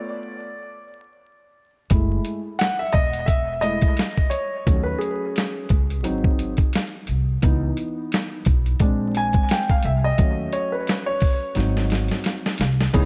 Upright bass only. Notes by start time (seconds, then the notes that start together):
1.91 F#1
2.94 E1
4.67 D#2
5.70 C#2
6.05 G#1
7.08 C2
7.43 C#2
8.46 B1
8.80 A#1
9.84 C2
10.19 D#2
11.56 G#1
12.60 C2
12.94 C#2